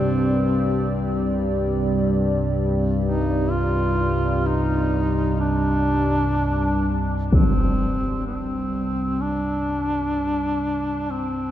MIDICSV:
0, 0, Header, 1, 5, 480
1, 0, Start_track
1, 0, Key_signature, -3, "minor"
1, 0, Tempo, 500000
1, 11052, End_track
2, 0, Start_track
2, 0, Title_t, "Analog synth pad"
2, 0, Program_c, 0, 89
2, 0, Note_on_c, 0, 60, 62
2, 0, Note_on_c, 0, 67, 88
2, 0, Note_on_c, 0, 74, 77
2, 11052, Note_off_c, 0, 60, 0
2, 11052, Note_off_c, 0, 67, 0
2, 11052, Note_off_c, 0, 74, 0
2, 11052, End_track
3, 0, Start_track
3, 0, Title_t, "Duduk"
3, 0, Program_c, 1, 69
3, 0, Note_on_c, 1, 60, 117
3, 1056, Note_off_c, 1, 60, 0
3, 2919, Note_on_c, 1, 63, 85
3, 3366, Note_on_c, 1, 65, 98
3, 3380, Note_off_c, 1, 63, 0
3, 4287, Note_on_c, 1, 63, 91
3, 4301, Note_off_c, 1, 65, 0
3, 5180, Note_off_c, 1, 63, 0
3, 5186, Note_on_c, 1, 62, 102
3, 6729, Note_off_c, 1, 62, 0
3, 7015, Note_on_c, 1, 60, 87
3, 7903, Note_off_c, 1, 60, 0
3, 7930, Note_on_c, 1, 60, 84
3, 8841, Note_on_c, 1, 62, 106
3, 8856, Note_off_c, 1, 60, 0
3, 10661, Note_on_c, 1, 60, 93
3, 10676, Note_off_c, 1, 62, 0
3, 11052, Note_off_c, 1, 60, 0
3, 11052, End_track
4, 0, Start_track
4, 0, Title_t, "Synth drone"
4, 0, Program_c, 2, 95
4, 0, Note_on_c, 2, 36, 76
4, 0, Note_on_c, 2, 43, 73
4, 11052, Note_off_c, 2, 36, 0
4, 11052, Note_off_c, 2, 43, 0
4, 11052, End_track
5, 0, Start_track
5, 0, Title_t, "Impact"
5, 0, Program_c, 3, 103
5, 7032, Note_on_c, 3, 60, 74
5, 7219, Note_off_c, 3, 60, 0
5, 11052, End_track
0, 0, End_of_file